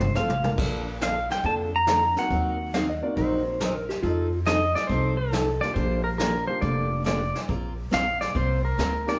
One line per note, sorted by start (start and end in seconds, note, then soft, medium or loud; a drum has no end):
0.00 0.17 C5 loud
0.00 mid tom medium
0.15 0.52 A1 medium
0.15 0.27 F3 medium
0.15 0.28 C4 medium
0.15 0.28 F4 medium
0.15 0.28 A4 medium
0.15 0.50 F5 medium
0.15 hi-hat pedal medium
0.15 mid tom medium
0.30 mid tom medium
0.43 0.98 A#3 medium
0.43 0.98 D4 medium
0.43 0.98 F4 medium
0.43 0.99 A4 medium
0.43 0.99 A#4 medium
0.43 mid tom medium
0.58 1.27 A#1 medium
0.58 0.81 D3 medium
0.58 0.82 F3 medium
0.58 0.82 A#3 soft
0.58 0.82 D4 medium
0.58 0.82 A4 medium
0.58 brush sweep soft
0.58 kick medium
0.58 crash medium
1.01 1.14 D3 medium
1.01 1.14 F3 medium
1.01 1.14 A#3 medium
1.01 1.14 D4 medium
1.01 1.14 A4 medium
1.01 1.31 F5 medium
1.01 snare medium
1.01 hi-hat pedal medium
1.30 1.46 G5 medium
1.30 snare soft
1.44 2.13 F2 medium
1.44 1.67 D3 medium
1.44 1.67 F3 medium
1.44 1.68 A#3 medium
1.44 1.68 D4 medium
1.44 1.68 A4 medium
1.44 1.54 A5 medium
1.44 brush sweep soft
1.44 kick soft
1.76 2.15 A#5 loud
1.87 2.00 D3 medium
1.87 2.00 F3 medium
1.87 2.00 A#3 medium
1.87 2.00 D4 medium
1.87 2.00 A4 medium
1.87 snare medium
1.87 hi-hat pedal medium
2.16 2.71 A#3 medium
2.16 2.71 C4 medium
2.16 2.71 D#4 medium
2.16 2.72 F#4 medium
2.16 2.72 A#4 medium
2.16 3.43 F#5 medium
2.16 snare soft
2.30 3.00 D#2 medium
2.30 2.54 D#3 medium
2.30 2.54 F#3 medium
2.30 2.54 C4 medium
2.30 2.54 D#4 medium
2.30 2.54 A#4 medium
2.30 brush sweep soft
2.30 kick soft
2.74 2.86 D#3 medium
2.74 2.86 F#3 medium
2.74 2.86 C4 medium
2.74 2.87 D#4 medium
2.74 2.87 A#4 medium
2.74 2.88 F5 medium
2.74 snare medium
2.74 hi-hat pedal medium
2.90 3.03 D#5 medium
3.02 3.57 A#3 medium
3.02 3.57 C4 medium
3.02 3.57 D#4 medium
3.02 3.57 F#4 medium
3.02 3.58 A#4 medium
3.02 3.17 D5 medium
3.17 3.86 A#1 medium
3.17 3.40 D#3 medium
3.17 3.40 F#3 medium
3.17 3.40 C4 medium
3.17 3.41 D#4 medium
3.17 3.41 A#4 medium
3.17 3.73 C5 medium
3.17 brush sweep medium
3.17 kick soft
3.60 3.73 D#3 medium
3.60 3.73 F#3 medium
3.60 3.73 C4 medium
3.60 3.73 D#4 medium
3.60 3.73 A#4 medium
3.60 snare medium
3.60 hi-hat pedal medium
3.75 3.89 A#4 medium
3.89 4.02 G4 medium
3.89 snare soft
4.03 4.72 F2 medium
4.03 4.26 F3 medium
4.03 4.27 C4 medium
4.03 4.27 D#4 medium
4.03 4.38 F4 medium
4.03 4.27 A4 medium
4.03 brush sweep soft
4.03 kick soft
4.46 4.58 F3 medium
4.46 4.59 C4 medium
4.46 4.59 D#4 medium
4.46 4.59 A4 medium
4.46 4.77 D#5 loud
4.46 snare medium
4.46 hi-hat pedal medium
4.75 4.90 D5 medium
4.75 snare soft
4.87 5.59 C2 medium
4.87 5.13 F3 medium
4.87 5.13 C4 medium
4.87 5.13 D#4 medium
4.87 5.13 A4 medium
4.87 5.19 C5 medium
4.87 brush sweep medium
4.87 kick soft
5.17 5.63 A4 medium
5.32 5.45 F3 medium
5.32 5.45 C4 medium
5.32 5.45 D#4 medium
5.32 5.46 A4 medium
5.32 snare medium
5.32 hi-hat pedal medium
5.61 6.16 G3 medium
5.61 6.17 A#3 medium
5.61 6.17 D4 medium
5.61 6.17 F4 medium
5.61 6.17 G4 medium
5.61 5.76 D5 loud
5.61 snare soft
5.74 6.45 A#1 loud
5.74 5.99 D3 soft
5.74 5.99 F3 soft
5.74 5.99 A#3 medium
5.74 6.00 D4 medium
5.74 5.99 G4 medium
5.74 6.03 C5 medium
5.74 brush sweep soft
5.74 kick soft
6.04 6.09 A#4 medium
6.18 6.32 D3 medium
6.18 6.32 F3 medium
6.18 6.32 A#3 medium
6.18 6.32 D4 medium
6.18 6.32 G4 medium
6.18 6.47 A#4 medium
6.18 snare medium
6.18 hi-hat pedal medium
6.47 7.03 G3 medium
6.47 7.03 A#3 medium
6.47 7.03 D4 medium
6.47 7.03 F4 medium
6.47 7.03 G4 medium
6.47 6.63 C5 medium
6.61 7.31 F1 medium
6.61 6.85 D3 medium
6.61 6.86 F3 medium
6.61 6.86 A#3 medium
6.61 6.86 D4 medium
6.61 6.86 G4 medium
6.61 7.05 D5 loud
6.61 brush sweep medium
6.61 kick soft
7.04 7.17 D3 medium
7.04 7.18 F3 medium
7.04 7.18 A#3 medium
7.04 7.18 D4 medium
7.04 7.18 G4 medium
7.04 7.40 D5 medium
7.04 snare medium
7.04 hi-hat pedal medium
7.35 snare soft
7.48 7.84 A#1 medium
7.48 7.72 A#3 soft
7.48 7.72 C4 soft
7.48 7.72 F4 soft
7.48 7.72 A#4 medium
7.48 brush sweep soft
7.48 kick soft
7.91 8.29 A#1 medium
7.91 8.04 A#3 medium
7.91 8.04 C4 medium
7.91 8.04 F4 medium
7.91 8.05 A#4 medium
7.91 8.21 F5 loud
7.91 snare medium
7.91 hi-hat pedal medium
8.21 8.36 D5 medium
8.21 snare soft
8.35 8.72 C2 medium
8.35 8.58 A#3 medium
8.35 8.58 C4 medium
8.35 8.59 F4 medium
8.35 8.59 A#4 medium
8.35 8.64 C5 loud
8.35 brush sweep medium
8.35 kick soft
8.65 9.09 A#4 medium
8.78 9.15 D2 medium
8.78 8.91 A#3 medium
8.78 8.91 C4 medium
8.78 8.91 F4 medium
8.78 8.91 A#4 medium
8.78 snare medium
8.78 hi-hat pedal medium
9.07 9.19 A#3 medium
9.07 9.19 C4 medium
9.07 9.19 D#4 medium
9.07 9.19 G4 medium
9.07 9.19 A#4 loud
9.07 9.19 D5 medium
9.07 snare soft